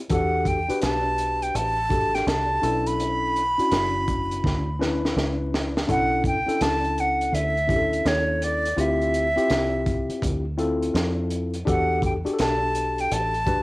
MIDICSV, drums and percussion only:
0, 0, Header, 1, 2, 480
1, 0, Start_track
1, 0, Key_signature, 2, "minor"
1, 0, Tempo, 722892
1, 68, Time_signature, 4, 2, 24, 8
1, 9048, End_track
2, 0, Start_track
2, 0, Title_t, "Drums"
2, 63, Note_on_c, 9, 42, 86
2, 67, Note_on_c, 9, 36, 91
2, 129, Note_off_c, 9, 42, 0
2, 134, Note_off_c, 9, 36, 0
2, 300, Note_on_c, 9, 36, 71
2, 303, Note_on_c, 9, 42, 56
2, 367, Note_off_c, 9, 36, 0
2, 369, Note_off_c, 9, 42, 0
2, 461, Note_on_c, 9, 42, 56
2, 528, Note_off_c, 9, 42, 0
2, 541, Note_on_c, 9, 42, 95
2, 551, Note_on_c, 9, 38, 98
2, 608, Note_off_c, 9, 42, 0
2, 617, Note_off_c, 9, 38, 0
2, 784, Note_on_c, 9, 42, 60
2, 851, Note_off_c, 9, 42, 0
2, 944, Note_on_c, 9, 42, 53
2, 1011, Note_off_c, 9, 42, 0
2, 1030, Note_on_c, 9, 42, 92
2, 1097, Note_off_c, 9, 42, 0
2, 1264, Note_on_c, 9, 36, 96
2, 1268, Note_on_c, 9, 42, 56
2, 1330, Note_off_c, 9, 36, 0
2, 1334, Note_off_c, 9, 42, 0
2, 1426, Note_on_c, 9, 42, 47
2, 1428, Note_on_c, 9, 38, 40
2, 1493, Note_off_c, 9, 42, 0
2, 1494, Note_off_c, 9, 38, 0
2, 1510, Note_on_c, 9, 42, 85
2, 1515, Note_on_c, 9, 38, 109
2, 1577, Note_off_c, 9, 42, 0
2, 1581, Note_off_c, 9, 38, 0
2, 1747, Note_on_c, 9, 42, 69
2, 1814, Note_off_c, 9, 42, 0
2, 1902, Note_on_c, 9, 42, 64
2, 1968, Note_off_c, 9, 42, 0
2, 1990, Note_on_c, 9, 42, 77
2, 2056, Note_off_c, 9, 42, 0
2, 2232, Note_on_c, 9, 42, 53
2, 2298, Note_off_c, 9, 42, 0
2, 2386, Note_on_c, 9, 42, 54
2, 2452, Note_off_c, 9, 42, 0
2, 2466, Note_on_c, 9, 42, 95
2, 2476, Note_on_c, 9, 38, 108
2, 2533, Note_off_c, 9, 42, 0
2, 2542, Note_off_c, 9, 38, 0
2, 2708, Note_on_c, 9, 42, 69
2, 2709, Note_on_c, 9, 36, 85
2, 2774, Note_off_c, 9, 42, 0
2, 2775, Note_off_c, 9, 36, 0
2, 2864, Note_on_c, 9, 42, 53
2, 2931, Note_off_c, 9, 42, 0
2, 2948, Note_on_c, 9, 36, 93
2, 2961, Note_on_c, 9, 38, 51
2, 3014, Note_off_c, 9, 36, 0
2, 3027, Note_off_c, 9, 38, 0
2, 3198, Note_on_c, 9, 38, 68
2, 3265, Note_off_c, 9, 38, 0
2, 3355, Note_on_c, 9, 38, 60
2, 3421, Note_off_c, 9, 38, 0
2, 3438, Note_on_c, 9, 38, 79
2, 3504, Note_off_c, 9, 38, 0
2, 3680, Note_on_c, 9, 38, 94
2, 3746, Note_off_c, 9, 38, 0
2, 3831, Note_on_c, 9, 38, 95
2, 3898, Note_off_c, 9, 38, 0
2, 3910, Note_on_c, 9, 36, 98
2, 3910, Note_on_c, 9, 42, 78
2, 3976, Note_off_c, 9, 36, 0
2, 3977, Note_off_c, 9, 42, 0
2, 4143, Note_on_c, 9, 36, 86
2, 4149, Note_on_c, 9, 42, 60
2, 4209, Note_off_c, 9, 36, 0
2, 4216, Note_off_c, 9, 42, 0
2, 4309, Note_on_c, 9, 42, 51
2, 4375, Note_off_c, 9, 42, 0
2, 4388, Note_on_c, 9, 42, 98
2, 4397, Note_on_c, 9, 38, 100
2, 4454, Note_off_c, 9, 42, 0
2, 4464, Note_off_c, 9, 38, 0
2, 4544, Note_on_c, 9, 42, 32
2, 4610, Note_off_c, 9, 42, 0
2, 4634, Note_on_c, 9, 42, 68
2, 4700, Note_off_c, 9, 42, 0
2, 4789, Note_on_c, 9, 42, 53
2, 4855, Note_off_c, 9, 42, 0
2, 4878, Note_on_c, 9, 42, 102
2, 4944, Note_off_c, 9, 42, 0
2, 5028, Note_on_c, 9, 42, 30
2, 5094, Note_off_c, 9, 42, 0
2, 5106, Note_on_c, 9, 36, 101
2, 5112, Note_on_c, 9, 42, 59
2, 5172, Note_off_c, 9, 36, 0
2, 5179, Note_off_c, 9, 42, 0
2, 5266, Note_on_c, 9, 42, 48
2, 5332, Note_off_c, 9, 42, 0
2, 5350, Note_on_c, 9, 42, 78
2, 5354, Note_on_c, 9, 38, 95
2, 5416, Note_off_c, 9, 42, 0
2, 5421, Note_off_c, 9, 38, 0
2, 5590, Note_on_c, 9, 42, 73
2, 5657, Note_off_c, 9, 42, 0
2, 5746, Note_on_c, 9, 42, 59
2, 5813, Note_off_c, 9, 42, 0
2, 5830, Note_on_c, 9, 42, 78
2, 5896, Note_off_c, 9, 42, 0
2, 5986, Note_on_c, 9, 42, 29
2, 6052, Note_off_c, 9, 42, 0
2, 6069, Note_on_c, 9, 42, 59
2, 6135, Note_off_c, 9, 42, 0
2, 6227, Note_on_c, 9, 42, 53
2, 6293, Note_off_c, 9, 42, 0
2, 6306, Note_on_c, 9, 42, 92
2, 6315, Note_on_c, 9, 38, 114
2, 6372, Note_off_c, 9, 42, 0
2, 6382, Note_off_c, 9, 38, 0
2, 6548, Note_on_c, 9, 42, 63
2, 6549, Note_on_c, 9, 36, 91
2, 6615, Note_off_c, 9, 36, 0
2, 6615, Note_off_c, 9, 42, 0
2, 6705, Note_on_c, 9, 42, 57
2, 6771, Note_off_c, 9, 42, 0
2, 6788, Note_on_c, 9, 36, 95
2, 6794, Note_on_c, 9, 42, 97
2, 6854, Note_off_c, 9, 36, 0
2, 6860, Note_off_c, 9, 42, 0
2, 7029, Note_on_c, 9, 42, 59
2, 7096, Note_off_c, 9, 42, 0
2, 7188, Note_on_c, 9, 42, 47
2, 7254, Note_off_c, 9, 42, 0
2, 7273, Note_on_c, 9, 42, 81
2, 7277, Note_on_c, 9, 38, 109
2, 7339, Note_off_c, 9, 42, 0
2, 7344, Note_off_c, 9, 38, 0
2, 7506, Note_on_c, 9, 42, 67
2, 7573, Note_off_c, 9, 42, 0
2, 7660, Note_on_c, 9, 42, 57
2, 7727, Note_off_c, 9, 42, 0
2, 7750, Note_on_c, 9, 36, 95
2, 7753, Note_on_c, 9, 42, 79
2, 7816, Note_off_c, 9, 36, 0
2, 7819, Note_off_c, 9, 42, 0
2, 7982, Note_on_c, 9, 36, 83
2, 7987, Note_on_c, 9, 42, 57
2, 8048, Note_off_c, 9, 36, 0
2, 8053, Note_off_c, 9, 42, 0
2, 8142, Note_on_c, 9, 42, 53
2, 8209, Note_off_c, 9, 42, 0
2, 8225, Note_on_c, 9, 42, 98
2, 8234, Note_on_c, 9, 38, 105
2, 8291, Note_off_c, 9, 42, 0
2, 8300, Note_off_c, 9, 38, 0
2, 8465, Note_on_c, 9, 42, 65
2, 8531, Note_off_c, 9, 42, 0
2, 8620, Note_on_c, 9, 42, 51
2, 8687, Note_off_c, 9, 42, 0
2, 8708, Note_on_c, 9, 42, 103
2, 8775, Note_off_c, 9, 42, 0
2, 8859, Note_on_c, 9, 42, 33
2, 8925, Note_off_c, 9, 42, 0
2, 8941, Note_on_c, 9, 36, 93
2, 8943, Note_on_c, 9, 42, 57
2, 9008, Note_off_c, 9, 36, 0
2, 9009, Note_off_c, 9, 42, 0
2, 9048, End_track
0, 0, End_of_file